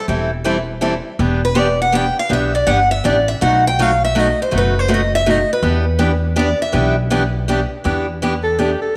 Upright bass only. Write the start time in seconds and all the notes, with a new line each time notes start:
0.08 E1
1.19 E1
2.30 B1
2.67 G1
3.05 A1
3.42 B1
4.53 F#1
5.63 E2
6.74 B1
7.85 E2